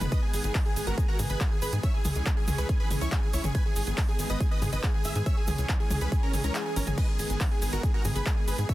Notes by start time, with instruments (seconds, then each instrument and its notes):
Already playing: analog synth pad D#3 G#3 B3
0.01 analog synth bass F#1, supersaw synth B4, synth pluck B5, closed hi-hat, mid tom, shaker
0.12 supersaw synth B4 D#5, synth pluck D#6, kick, closed hi-hat, shaker
0.22 supersaw synth G#4, synth pluck G#5
0.33 analog synth bass G#1, supersaw synth G#4, synth pluck G#5, open hi-hat, shaker
0.44 analog synth bass G#1, supersaw synth G#4, synth pluck G#5, closed hi-hat, shaker
0.55 kick, clap, open hi-hat, shaker
0.65 supersaw synth G#4, synth pluck G#5
0.76 analog synth bass G#1, supersaw synth G#4, synth pluck G#5, open hi-hat, shaker
0.87 analog synth bass G#1, supersaw synth F#4 A#4, synth pluck A#5, closed hi-hat, shaker
0.98 supersaw synth G#4, synth pluck G#5, kick, closed hi-hat, shaker
1.08 supersaw synth F#4 A#4, synth pluck A#5
1.19 analog synth bass G#2, supersaw synth G#4, synth pluck G#5, open hi-hat, mid tom, shaker
1.29 analog synth bass G#1, supersaw synth G#4 B4, synth pluck B5, closed hi-hat, shaker
1.40 supersaw synth G#4, synth pluck G#5, kick, clap, closed hi-hat, shaker
1.51 supersaw synth G#4, synth pluck G#5
1.62 analog synth bass G#1, supersaw synth G#4 B4, synth pluck B5, open hi-hat, shaker
1.72 analog synth bass G#2, supersaw synth G#4, synth pluck G#5, closed hi-hat, shaker
1.83 analog synth pad E3 C#4, supersaw synth C#5 E5, synth pluck E6, kick, closed hi-hat, shaker
1.94 supersaw synth G#4, synth pluck G#5
2.05 analog synth bass C#2, supersaw synth G#4, synth pluck G#5, open hi-hat, mid tom, shaker
2.15 analog synth bass C#2, supersaw synth G#4, synth pluck G#5, closed hi-hat, shaker
2.26 kick, clap, closed hi-hat, shaker
2.37 supersaw synth G#4, synth pluck G#5
2.47 analog synth bass C#2, supersaw synth G#4, synth pluck G#5, open hi-hat, mid tom, shaker
2.58 analog synth bass C#2, supersaw synth G#4 B4, synth pluck B5, closed hi-hat, shaker
2.69 supersaw synth G#4, synth pluck G#5, kick, closed hi-hat, shaker
2.80 supersaw synth G#4 B4, synth pluck B5
2.91 analog synth bass G#1, supersaw synth G#4, synth pluck G#5, open hi-hat, mid tom, shaker
3.01 analog synth bass C#2, supersaw synth E4 C#5, synth pluck C#6, closed hi-hat, shaker
3.12 supersaw synth G#4, synth pluck G#5, kick, clap, closed hi-hat, shaker
3.23 supersaw synth G#4, synth pluck G#5
3.33 analog synth bass C#2, supersaw synth E4 C#5, synth pluck C#6, open hi-hat, shaker
3.44 analog synth bass G#1, supersaw synth G#4, synth pluck G#5, closed hi-hat, mid tom, shaker
3.55 analog synth pad D#3 G#3 B3, supersaw synth B4 G#5, synth pluck G#6, kick, closed hi-hat, shaker
3.66 supersaw synth G#4, synth pluck G#5
3.76 analog synth bass G#1, supersaw synth G#4, synth pluck G#5, open hi-hat, shaker
3.87 analog synth bass G#1, supersaw synth G#4, synth pluck G#5, closed hi-hat, shaker
3.98 kick, clap, open hi-hat, shaker
4.08 supersaw synth G#4, synth pluck G#5
4.19 analog synth bass G#1, supersaw synth G#4, synth pluck G#5, open hi-hat, shaker
4.30 analog synth bass G#1, supersaw synth B4 D#5, synth pluck D#6, closed hi-hat, shaker
4.40 supersaw synth G#4, synth pluck G#5, kick, closed hi-hat, shaker
4.51 supersaw synth B4 D#5, synth pluck D#6
4.62 analog synth bass G#2, supersaw synth G#4, synth pluck G#5, open hi-hat, mid tom, shaker
4.73 analog synth bass G#1, supersaw synth B4 D#5, synth pluck D#6, closed hi-hat, shaker
4.83 supersaw synth G#4, synth pluck G#5, kick, clap, closed hi-hat, shaker
4.94 supersaw synth G#4, synth pluck G#5
5.04 analog synth bass G#1, supersaw synth G#4 E5, synth pluck E6, open hi-hat, shaker
5.15 analog synth bass G#2, supersaw synth G#4, synth pluck G#5, closed hi-hat, shaker
5.26 analog synth pad E3 C#4, supersaw synth C#5 E5, synth pluck E6, kick, closed hi-hat, shaker
5.37 supersaw synth G#4, synth pluck G#5
5.47 analog synth bass C#2, supersaw synth G#4, synth pluck G#5, open hi-hat, mid tom, shaker
5.58 analog synth bass C#2, supersaw synth G#4, synth pluck G#5, closed hi-hat, shaker
5.69 kick, clap, closed hi-hat, shaker
5.80 supersaw synth G#4, synth pluck G#5
5.90 analog synth bass C#2, supersaw synth G#4, synth pluck G#5, open hi-hat, mid tom, shaker
6.01 analog synth bass C#2, supersaw synth G#4 B4, synth pluck B5, closed hi-hat, shaker
6.12 supersaw synth G#4, synth pluck G#5, kick, closed hi-hat, swell, shaker
6.23 supersaw synth C#4 A#4, synth pluck A#5
6.33 analog synth bass G#1, supersaw synth G#4, synth pluck G#5, open hi-hat, mid tom, shaker
6.44 analog synth bass C#2, supersaw synth C#4 A#4, synth pluck A#5, closed hi-hat, shaker
6.55 supersaw synth G#4, synth pluck G#5, clap, closed hi-hat, shaker
6.66 supersaw synth G#4, synth pluck G#5
6.76 analog synth bass G#1, supersaw synth C#4 A#4, synth pluck A#5, open hi-hat, shaker
6.87 analog synth bass G#1, supersaw synth G#4, synth pluck G#5, closed hi-hat, mid tom, shaker
6.97 analog synth pad D#3 B3, supersaw synth B4 D#5, synth pluck D#6, kick, closed hi-hat, crash, shaker
7.09 supersaw synth G#4, synth pluck G#5
7.19 analog synth bass G#1, supersaw synth G#4, synth pluck G#5, open hi-hat, shaker
7.30 analog synth bass G#1, supersaw synth G#4, synth pluck G#5, closed hi-hat, shaker
7.40 kick, clap, open hi-hat, shaker
7.51 supersaw synth G#4, synth pluck G#5
7.62 analog synth bass G#1, supersaw synth G#4, synth pluck G#5, open hi-hat, shaker
7.73 analog synth bass G#1, supersaw synth F#4 A#4, synth pluck A#5, closed hi-hat, shaker
7.83 supersaw synth G#4, synth pluck G#5, kick, closed hi-hat, shaker
7.94 supersaw synth F#4 A#4, synth pluck A#5
8.05 analog synth bass G#2, supersaw synth G#4, synth pluck G#5, open hi-hat, mid tom, shaker
8.16 analog synth bass G#1, supersaw synth G#4 B4, synth pluck B5, closed hi-hat, shaker
8.26 supersaw synth G#4, synth pluck G#5, kick, clap, closed hi-hat, shaker
8.37 supersaw synth G#4, synth pluck G#5
8.48 analog synth bass G#1, supersaw synth G#4 B4, synth pluck B5, open hi-hat, shaker
8.58 analog synth bass G#2, supersaw synth G#4, synth pluck G#5, closed hi-hat, shaker
8.69 analog synth pad E3 C#4, supersaw synth C#5 E5, synth pluck E6, kick, closed hi-hat, shaker